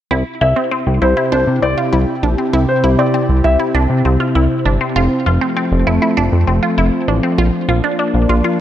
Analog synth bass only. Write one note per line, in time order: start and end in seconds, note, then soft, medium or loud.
0.11 0.23 C2 loud
0.41 0.54 C2 loud
0.87 0.99 C2 medium
1.02 1.14 C2 medium
1.32 1.45 C2 loud
1.47 1.60 C3 medium
1.63 1.75 C2 medium
1.93 2.05 C2 loud
2.23 2.36 A#1 medium
2.53 2.66 C2 loud
2.84 2.96 C2 medium
3.29 3.42 C2 medium
3.45 3.57 C2 medium
3.75 3.87 C2 loud
3.90 4.02 C3 medium
4.05 4.17 C2 loud
4.35 4.48 C2 medium
4.66 4.78 G1 medium
4.96 5.08 F1 loud
5.26 5.39 F1 loud
5.72 5.84 F1 loud
5.87 5.99 F1 medium
6.17 6.30 F1 loud
6.32 6.45 F2 medium
6.48 6.60 F1 loud
6.78 6.90 F1 loud
7.08 7.21 A1 medium
7.38 7.51 A#1 loud
7.69 7.81 A#1 loud
8.14 8.27 A#1 loud
8.29 8.42 A#1 medium